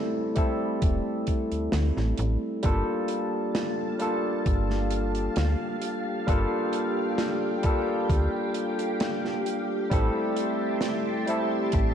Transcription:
Already playing: tine electric piano G3 A3 C4 E4 A4
0.35 tine electric piano G3 A3 C4 E4 A4, kick, closed hi-hat
0.82 fm bass E1, kick, closed hi-hat
1.27 kick, closed hi-hat
1.52 fm bass D2, closed hi-hat
1.72 fm bass D2, snare, closed hi-hat
1.97 fm bass A1, snare
2.18 fm bass A1, closed hi-hat
2.62 fm bass G1, tine electric piano G3 A#3 D4 F4 A4, string machine G4 F5 A5, kick, closed hi-hat
3.08 closed hi-hat
3.55 snare, closed hi-hat
3.99 tine electric piano G3 A#3 D4 F4 A4, closed hi-hat
4.46 fm bass G1, kick, closed hi-hat
4.70 snare
4.91 closed hi-hat
5.15 closed hi-hat
5.36 fm bass D2, snare, closed hi-hat
5.82 closed hi-hat
6.27 fm bass G1, tine electric piano G3 A#3 D4 F4 A4, string machine G5, kick, closed hi-hat
6.73 closed hi-hat
7.18 snare, closed hi-hat
7.63 tine electric piano G3 A#3 D4 F4 A4, kick, closed hi-hat
8.10 fm bass D2, kick, closed hi-hat
8.54 closed hi-hat
8.79 closed hi-hat
9.00 snare, closed hi-hat
9.25 snare
9.46 closed hi-hat
9.90 fm bass A1, tine electric piano G3 A3 C4 E4 A4, string machine E5 A5 C6, kick, closed hi-hat
10.36 closed hi-hat
10.81 snare, closed hi-hat
11.27 tine electric piano G3 A3 C4 E4 A4, closed hi-hat
11.72 fm bass A1, kick, closed hi-hat

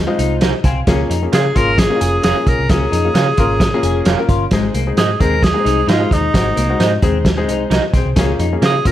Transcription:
0.07 grand piano G#3 C4 D#4 F4
0.19 picked electric bass C2, clean electric guitar D#4, closed hi-hat
0.41 clean electric guitar D#4 G#4 C5 D#5, grand piano C5 D#5, snare, closed hi-hat
0.64 picked electric bass C2, clean electric guitar C4, grand piano F5 G#5, kick, snare, closed hi-hat
0.87 picked electric bass C#2, grand piano A#3 C#4 F4 G#4, clean electric guitar C#4, kick, snare, closed hi-hat
1.10 picked electric bass F2, clean electric guitar D#4, closed hi-hat
1.22 grand piano A#3 C#4 F4 G#4
1.32 picked electric bass C#3, clean electric guitar F4 A#4 C#5 F5, tenor saxophone G#4, snare, closed hi-hat
1.55 picked electric bass G#1, grand piano A#3 C#4 F4 G#4, clean electric guitar F4, tenor saxophone A#4, kick, closed hi-hat
1.78 tenor saxophone G#4, kick, snare, closed hi-hat
1.90 grand piano A#3 C#4 D#4 G#4
1.96 grand piano F4
2.01 picked electric bass F1, clean electric guitar G#4, closed hi-hat
2.23 picked electric bass F1, clean electric guitar F4 G#4 A#4 C#5 F5, tenor saxophone G#4, snare, closed hi-hat
2.35 grand piano A#3 C#4 F4 G#4
2.46 picked electric bass B1, tenor saxophone A#4, kick, closed hi-hat
2.59 picked electric bass C2
2.69 picked electric bass C#2, grand piano A#3 C#4 F4 A#4, clean electric guitar C#4, tenor saxophone G#4, kick, snare, closed hi-hat
2.92 picked electric bass F2, clean electric guitar D#4, closed hi-hat
3.05 grand piano A#3 C#4 F4 G#4
3.14 picked electric bass C#3, clean electric guitar F4 A#4 C#5 F5, snare, closed hi-hat
3.37 picked electric bass G#1, grand piano A#3 C#4 F4 A#4, clean electric guitar F4, kick, closed hi-hat
3.60 kick, snare, closed hi-hat
3.74 grand piano A#3 C#4 F4 G#4
3.83 picked electric bass F1, clean electric guitar G#4, closed hi-hat
4.05 picked electric bass F1, clean electric guitar F4 A#4 C#5 F5, snare, closed hi-hat
4.19 grand piano A#3 C#4 F4 A#4
4.29 picked electric bass G1, clean electric guitar F4, kick, closed hi-hat
4.51 picked electric bass G#1, clean electric guitar G#3, grand piano G#3 C4 D#4 G#4, kick, snare, closed hi-hat
4.74 picked electric bass C2, clean electric guitar A#3, closed hi-hat
4.87 grand piano G#3 C4 D#4 G#4
4.97 picked electric bass G#2, clean electric guitar D#4 G#4 C5 D#5, tenor saxophone G#4, snare, closed hi-hat
5.20 picked electric bass D#2, grand piano G#3 C4 D#4 G#4, clean electric guitar C4, tenor saxophone A#4, kick, closed hi-hat
5.43 tenor saxophone G#4, kick, snare, closed hi-hat
5.54 grand piano G#3 A#3 D#4 G#4
5.60 grand piano C4
5.65 picked electric bass C2, clean electric guitar D#4, closed hi-hat
5.87 picked electric bass G#2, clean electric guitar D#4 G#4 C5 D#5, tenor saxophone F4, snare, closed hi-hat
6.00 grand piano G#3 C4 D#4 G#4
6.11 picked electric bass D#2, tenor saxophone D#4, kick, snare, closed hi-hat
6.33 picked electric bass G#1, clean electric guitar G#3, grand piano G#3 C4 D#4 F#4, kick, snare, closed hi-hat
6.56 picked electric bass C2, clean electric guitar A#3, closed hi-hat
6.69 grand piano G#3 C4 D#4 F#4
6.79 picked electric bass G#2, clean electric guitar D#4 G#4 C5 D#5, snare, closed hi-hat
7.02 picked electric bass D#2, grand piano G#3 C4 D#4 G#4, clean electric guitar C4, kick, closed hi-hat
7.25 kick, snare, closed hi-hat
7.37 grand piano G#3 C4 D#4 G#4
7.48 picked electric bass C2, clean electric guitar D#4, grand piano G#4 C5, closed hi-hat
7.70 picked electric bass C2, clean electric guitar D#4 G#4 C5 D#5, grand piano C5 D#5, snare, closed hi-hat
7.93 picked electric bass B1, clean electric guitar C4, grand piano G#4 C5, kick, snare, closed hi-hat
8.05 picked electric bass C2
8.16 picked electric bass C#2, grand piano A#3 C#4 F4 G#4, clean electric guitar C#4, kick, snare, closed hi-hat
8.39 picked electric bass F2, clean electric guitar D#4, closed hi-hat
8.53 grand piano A#3 C#4 F4 G#4
8.62 picked electric bass C#3, clean electric guitar C#4 G#4 A#4 F5, tenor saxophone G#4, snare, closed hi-hat
8.85 picked electric bass G#1, grand piano A#3 C#4 F4 A#4, clean electric guitar F4, tenor saxophone A#4, kick, closed hi-hat

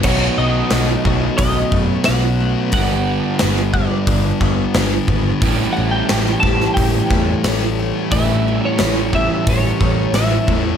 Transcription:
0.03 picked electric bass B1, distorted electric guitar B2 F#3, overdriven electric guitar B2 F#3 A3, twelve-string acoustic guitar D#3, clean electric guitar C#5, kick, crash
0.07 distorted electric guitar B3, overdriven electric guitar D#4 F#4
0.38 picked electric bass B1, twelve-string acoustic guitar D#3, clean electric guitar D#5
0.70 picked electric bass B1, twelve-string acoustic guitar A3, snare, open hi-hat
1.05 picked electric bass B1, distorted electric guitar B2 F#3 B3, twelve-string acoustic guitar F#4, kick
1.38 picked electric bass B1, twelve-string acoustic guitar C#4, clean electric guitar D#5, kick, open hi-hat
1.72 picked electric bass F#2, twelve-string acoustic guitar A3, kick
1.91 clean electric guitar C#5
2.04 distorted electric guitar B2, twelve-string acoustic guitar C#4, clean electric guitar F#5, snare, open hi-hat
2.08 picked electric bass B1, distorted electric guitar F#3 B3
2.40 twelve-string acoustic guitar A3
2.72 picked electric bass G1, distorted electric guitar G2 D3 G3, overdriven electric guitar G2 D3 G3 B3 D4, clean electric guitar F#5, kick, open hi-hat
2.76 overdriven electric guitar G4
3.39 picked electric bass G1, twelve-string acoustic guitar B3, snare, open hi-hat
3.57 snare
3.74 distorted electric guitar G2 D3 G3, clean electric guitar D5, kick
4.07 picked electric bass G1, twelve-string acoustic guitar D4, kick, open hi-hat
4.41 picked electric bass G1, twelve-string acoustic guitar B3, kick
4.74 picked electric bass G1, distorted electric guitar G2 D3 G3, twelve-string acoustic guitar D4, snare, open hi-hat
5.08 picked electric bass G#1, twelve-string acoustic guitar B3, kick
5.42 picked electric bass A1, overdriven electric guitar A2 E3 G3 C#4 G4, distorted electric guitar A2 E3 A3, twelve-string acoustic guitar E3, kick, open hi-hat
5.73 clean electric guitar F#5
5.77 picked electric bass A1, twelve-string acoustic guitar E3
5.91 clean electric guitar G5
6.09 picked electric bass A1, twelve-string acoustic guitar A3, snare, open hi-hat
6.26 snare
6.40 picked electric bass A1, distorted electric guitar A3, clean electric guitar A5, kick
6.45 distorted electric guitar A2 E3, twelve-string acoustic guitar G4
6.61 snare
6.74 picked electric bass A1, clean electric guitar G5, kick, open hi-hat
6.79 twelve-string acoustic guitar C#4
7.11 picked electric bass E2, twelve-string acoustic guitar A3, kick
7.44 picked electric bass A1, distorted electric guitar A2 E3 A3, twelve-string acoustic guitar C#4, snare, open hi-hat
7.80 twelve-string acoustic guitar A3
8.10 picked electric bass A1, overdriven electric guitar A2 E3 G3 C#4 G4, distorted electric guitar A2 E3 A3, twelve-string acoustic guitar E3, clean electric guitar E5, kick, open hi-hat
8.48 twelve-string acoustic guitar E3
8.65 clean electric guitar C#5
8.79 picked electric bass A1, twelve-string acoustic guitar A3, snare, open hi-hat
9.13 distorted electric guitar A2 E3 A3, twelve-string acoustic guitar G4, clean electric guitar E5, kick
9.47 picked electric bass A1, twelve-string acoustic guitar C#4, clean electric guitar C#5, kick, open hi-hat
9.81 picked electric bass A1, twelve-string acoustic guitar A3, kick
10.13 picked electric bass A1, distorted electric guitar A2 E3, twelve-string acoustic guitar C#4, clean electric guitar E5, snare, open hi-hat
10.18 distorted electric guitar A3
10.48 picked electric bass E2, twelve-string acoustic guitar A3, kick

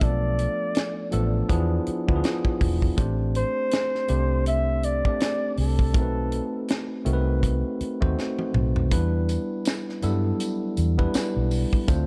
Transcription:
0.01 fingered electric bass B1, tine electric piano F3 A3 B3 D4 A4, flugelhorn D5, kick, closed hi-hat
0.39 closed hi-hat
0.75 snare, closed hi-hat
1.11 fingered electric bass A1, tine electric piano F3 A3 B3 D4 A4, closed hi-hat
1.48 fingered electric bass E2, tine electric piano F3 B3 D4 E4 G#4, kick, closed hi-hat
1.87 muted fingered electric bass stroke, closed hi-hat
2.08 fingered electric bass D2, tine electric piano F3 B3 D4 E4 F4, kick
2.16 tine electric piano G#4
2.24 snare, closed hi-hat
2.45 kick
2.61 fingered electric bass E1, kick, open hi-hat
2.82 kick
2.97 fingered electric bass A1, tine electric piano A3 C4 D4 G4 C5, kick, closed hi-hat
3.35 flugelhorn C5, closed hi-hat
3.71 snare, closed hi-hat
3.95 snare
4.08 fingered electric bass C2, tine electric piano A3 C4 D4 G4 C5, closed hi-hat
4.46 flugelhorn E5, closed hi-hat
4.83 flugelhorn D5, closed hi-hat
5.05 tine electric piano A3 C4 D4 G4 D5, kick
5.20 snare, closed hi-hat
5.57 fingered electric bass C2, flugelhorn A4, open hi-hat
5.79 kick
5.94 fingered electric bass B1, tine electric piano A3 C4 D#4 F#4 A#4, kick, closed hi-hat
6.02 tine electric piano B4
6.32 closed hi-hat
6.68 snare, closed hi-hat
7.05 fingered electric bass C2, tine electric piano A3 C4 D#4 F#4 A#4, closed hi-hat
7.13 tine electric piano B4
7.43 kick, closed hi-hat
7.81 muted fingered electric bass stroke, closed hi-hat
8.01 fingered electric bass D#2, tine electric piano A3 C4 D#4 F#4 C5, kick
8.19 snare
8.39 high tom
8.54 fingered electric bass B1, mid tom
8.76 floor tom
8.91 fingered electric bass E2, tine electric piano G3 B3 D4 E4 B4, kick, closed hi-hat
9.29 closed hi-hat, tambourine
9.65 snare, closed hi-hat, tambourine
9.89 snare
10.02 fingered electric bass G2, tine electric piano F#3 B3 D4 E4 A4, closed hi-hat, tambourine
10.09 tine electric piano G3
10.40 closed hi-hat, tambourine
10.77 fingered electric bass E2, closed hi-hat, tambourine
10.98 tine electric piano G3 B3 D4 E4 B4, kick
11.14 muted fingered electric bass stroke, snare, closed hi-hat, tambourine
11.36 fingered electric bass B1
11.51 open hi-hat, tambourine
11.73 kick
11.88 fingered electric bass D2, tine electric piano A3 C4 D4 F4 C5, kick, closed hi-hat, tambourine

